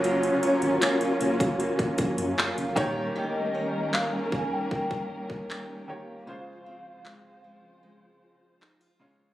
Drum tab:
HH |xxxxxxxxxxxx-xx-|----------------|----------------|
CP |----x-------x---|----x-------x---|----x-------x---|
BD |-------o-oo---o-|------o-oo-o----|----------------|